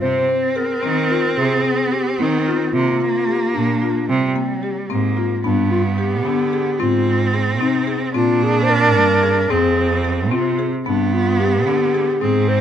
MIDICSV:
0, 0, Header, 1, 5, 480
1, 0, Start_track
1, 0, Tempo, 542005
1, 12, Time_signature, 5, 3, 24, 8
1, 11166, End_track
2, 0, Start_track
2, 0, Title_t, "Clarinet"
2, 0, Program_c, 0, 71
2, 16, Note_on_c, 0, 72, 90
2, 498, Note_on_c, 0, 70, 81
2, 511, Note_off_c, 0, 72, 0
2, 1219, Note_on_c, 0, 68, 82
2, 1233, Note_off_c, 0, 70, 0
2, 1692, Note_off_c, 0, 68, 0
2, 1697, Note_on_c, 0, 67, 74
2, 1948, Note_on_c, 0, 63, 74
2, 1961, Note_off_c, 0, 67, 0
2, 2416, Note_on_c, 0, 65, 81
2, 2429, Note_off_c, 0, 63, 0
2, 3141, Note_on_c, 0, 62, 76
2, 3155, Note_off_c, 0, 65, 0
2, 3621, Note_on_c, 0, 60, 68
2, 3635, Note_off_c, 0, 62, 0
2, 4340, Note_off_c, 0, 60, 0
2, 4826, Note_on_c, 0, 62, 73
2, 5046, Note_off_c, 0, 62, 0
2, 5058, Note_on_c, 0, 65, 79
2, 5166, Note_off_c, 0, 65, 0
2, 5299, Note_on_c, 0, 67, 88
2, 6017, Note_on_c, 0, 65, 81
2, 6030, Note_off_c, 0, 67, 0
2, 6497, Note_off_c, 0, 65, 0
2, 6739, Note_on_c, 0, 63, 69
2, 7073, Note_off_c, 0, 63, 0
2, 7224, Note_on_c, 0, 65, 83
2, 7470, Note_on_c, 0, 68, 84
2, 7483, Note_off_c, 0, 65, 0
2, 7642, Note_on_c, 0, 72, 71
2, 7655, Note_off_c, 0, 68, 0
2, 7706, Note_on_c, 0, 70, 102
2, 7720, Note_off_c, 0, 72, 0
2, 8416, Note_on_c, 0, 68, 81
2, 8430, Note_off_c, 0, 70, 0
2, 8896, Note_off_c, 0, 68, 0
2, 9139, Note_on_c, 0, 65, 74
2, 9472, Note_off_c, 0, 65, 0
2, 9619, Note_on_c, 0, 62, 70
2, 9860, Note_on_c, 0, 65, 73
2, 9873, Note_off_c, 0, 62, 0
2, 10092, Note_on_c, 0, 67, 88
2, 10105, Note_off_c, 0, 65, 0
2, 10814, Note_on_c, 0, 68, 92
2, 10827, Note_off_c, 0, 67, 0
2, 11057, Note_on_c, 0, 72, 93
2, 11070, Note_off_c, 0, 68, 0
2, 11166, Note_off_c, 0, 72, 0
2, 11166, End_track
3, 0, Start_track
3, 0, Title_t, "Marimba"
3, 0, Program_c, 1, 12
3, 254, Note_on_c, 1, 60, 57
3, 414, Note_off_c, 1, 60, 0
3, 492, Note_on_c, 1, 68, 60
3, 653, Note_off_c, 1, 68, 0
3, 733, Note_on_c, 1, 60, 62
3, 894, Note_off_c, 1, 60, 0
3, 976, Note_on_c, 1, 65, 67
3, 1136, Note_off_c, 1, 65, 0
3, 1455, Note_on_c, 1, 60, 64
3, 1615, Note_off_c, 1, 60, 0
3, 1699, Note_on_c, 1, 68, 57
3, 1858, Note_off_c, 1, 68, 0
3, 1938, Note_on_c, 1, 60, 62
3, 2098, Note_off_c, 1, 60, 0
3, 2183, Note_on_c, 1, 65, 67
3, 2341, Note_off_c, 1, 65, 0
3, 2660, Note_on_c, 1, 58, 60
3, 2820, Note_off_c, 1, 58, 0
3, 2900, Note_on_c, 1, 67, 61
3, 3059, Note_off_c, 1, 67, 0
3, 3142, Note_on_c, 1, 58, 63
3, 3301, Note_off_c, 1, 58, 0
3, 3383, Note_on_c, 1, 65, 62
3, 3541, Note_off_c, 1, 65, 0
3, 3860, Note_on_c, 1, 58, 63
3, 4019, Note_off_c, 1, 58, 0
3, 4100, Note_on_c, 1, 67, 59
3, 4260, Note_off_c, 1, 67, 0
3, 4339, Note_on_c, 1, 60, 66
3, 4499, Note_off_c, 1, 60, 0
3, 4578, Note_on_c, 1, 65, 62
3, 4738, Note_off_c, 1, 65, 0
3, 4820, Note_on_c, 1, 59, 72
3, 5140, Note_off_c, 1, 59, 0
3, 5297, Note_on_c, 1, 67, 59
3, 5458, Note_off_c, 1, 67, 0
3, 5535, Note_on_c, 1, 59, 69
3, 5696, Note_off_c, 1, 59, 0
3, 5784, Note_on_c, 1, 68, 67
3, 5942, Note_off_c, 1, 68, 0
3, 6020, Note_on_c, 1, 60, 74
3, 6340, Note_off_c, 1, 60, 0
3, 6498, Note_on_c, 1, 68, 64
3, 6658, Note_off_c, 1, 68, 0
3, 6735, Note_on_c, 1, 60, 72
3, 6896, Note_off_c, 1, 60, 0
3, 6973, Note_on_c, 1, 68, 69
3, 7134, Note_off_c, 1, 68, 0
3, 7212, Note_on_c, 1, 60, 76
3, 7534, Note_off_c, 1, 60, 0
3, 7697, Note_on_c, 1, 70, 66
3, 7857, Note_off_c, 1, 70, 0
3, 7930, Note_on_c, 1, 58, 71
3, 8093, Note_off_c, 1, 58, 0
3, 8173, Note_on_c, 1, 68, 69
3, 8335, Note_off_c, 1, 68, 0
3, 8416, Note_on_c, 1, 60, 78
3, 8736, Note_off_c, 1, 60, 0
3, 8894, Note_on_c, 1, 68, 62
3, 9055, Note_off_c, 1, 68, 0
3, 9135, Note_on_c, 1, 60, 65
3, 9295, Note_off_c, 1, 60, 0
3, 9375, Note_on_c, 1, 68, 67
3, 9536, Note_off_c, 1, 68, 0
3, 9618, Note_on_c, 1, 59, 76
3, 9938, Note_off_c, 1, 59, 0
3, 10097, Note_on_c, 1, 67, 62
3, 10257, Note_off_c, 1, 67, 0
3, 10336, Note_on_c, 1, 59, 65
3, 10496, Note_off_c, 1, 59, 0
3, 10578, Note_on_c, 1, 68, 68
3, 10737, Note_off_c, 1, 68, 0
3, 10816, Note_on_c, 1, 60, 75
3, 11136, Note_off_c, 1, 60, 0
3, 11166, End_track
4, 0, Start_track
4, 0, Title_t, "Cello"
4, 0, Program_c, 2, 42
4, 17, Note_on_c, 2, 60, 85
4, 2413, Note_on_c, 2, 58, 84
4, 2427, Note_off_c, 2, 60, 0
4, 3620, Note_on_c, 2, 55, 67
4, 3633, Note_off_c, 2, 58, 0
4, 4339, Note_on_c, 2, 58, 62
4, 4352, Note_off_c, 2, 55, 0
4, 4814, Note_off_c, 2, 58, 0
4, 4819, Note_on_c, 2, 59, 72
4, 6015, Note_on_c, 2, 60, 82
4, 6029, Note_off_c, 2, 59, 0
4, 7208, Note_off_c, 2, 60, 0
4, 7213, Note_on_c, 2, 62, 101
4, 8412, Note_on_c, 2, 60, 81
4, 8425, Note_off_c, 2, 62, 0
4, 9373, Note_off_c, 2, 60, 0
4, 9615, Note_on_c, 2, 59, 88
4, 10779, Note_off_c, 2, 59, 0
4, 10818, Note_on_c, 2, 60, 91
4, 11166, Note_off_c, 2, 60, 0
4, 11166, End_track
5, 0, Start_track
5, 0, Title_t, "Cello"
5, 0, Program_c, 3, 42
5, 15, Note_on_c, 3, 48, 82
5, 201, Note_off_c, 3, 48, 0
5, 738, Note_on_c, 3, 51, 84
5, 1110, Note_off_c, 3, 51, 0
5, 1212, Note_on_c, 3, 48, 91
5, 1400, Note_off_c, 3, 48, 0
5, 1939, Note_on_c, 3, 51, 91
5, 2311, Note_off_c, 3, 51, 0
5, 2417, Note_on_c, 3, 48, 94
5, 2603, Note_off_c, 3, 48, 0
5, 3141, Note_on_c, 3, 46, 81
5, 3512, Note_off_c, 3, 46, 0
5, 3622, Note_on_c, 3, 48, 93
5, 3807, Note_off_c, 3, 48, 0
5, 4341, Note_on_c, 3, 44, 78
5, 4712, Note_off_c, 3, 44, 0
5, 4823, Note_on_c, 3, 43, 89
5, 5539, Note_on_c, 3, 50, 79
5, 5552, Note_off_c, 3, 43, 0
5, 5911, Note_off_c, 3, 50, 0
5, 6017, Note_on_c, 3, 44, 87
5, 6732, Note_on_c, 3, 48, 83
5, 6745, Note_off_c, 3, 44, 0
5, 7107, Note_off_c, 3, 48, 0
5, 7212, Note_on_c, 3, 46, 92
5, 7935, Note_on_c, 3, 43, 83
5, 7948, Note_off_c, 3, 46, 0
5, 8308, Note_off_c, 3, 43, 0
5, 8411, Note_on_c, 3, 41, 92
5, 9131, Note_on_c, 3, 48, 83
5, 9144, Note_off_c, 3, 41, 0
5, 9505, Note_off_c, 3, 48, 0
5, 9617, Note_on_c, 3, 43, 89
5, 10330, Note_on_c, 3, 50, 79
5, 10343, Note_off_c, 3, 43, 0
5, 10704, Note_off_c, 3, 50, 0
5, 10815, Note_on_c, 3, 44, 93
5, 11166, Note_off_c, 3, 44, 0
5, 11166, End_track
0, 0, End_of_file